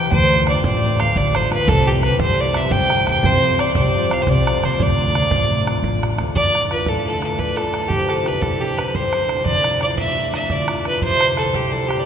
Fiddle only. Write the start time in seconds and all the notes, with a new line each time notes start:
0.12 C5
0.48 D5
0.65 D5
1.00 F5
1.17 D5
1.36 C5
1.53 B4
1.68 A4
1.87 G4
2.03 B4
2.21 C5
2.40 D5
2.57 E5
2.72 G5
3.09 G5
3.25 C5
3.60 D5
3.76 D5
4.13 F5
4.22 C5
4.29 D5
4.65 C5
4.83 D5
6.35 D5
6.72 B4
6.89 A4
7.07 A4
7.23 A4
7.39 B4
7.57 A4
7.89 G4
8.09 A4
8.28 B4
8.42 A4
8.61 G4
8.78 B4
8.95 C5
9.46 D5
9.82 D5
9.99 E5
10.34 E5
10.52 D5
10.87 B4
11.04 C5
11.38 A4
11.55 G4
11.72 A4
11.88 G4
11.99 D5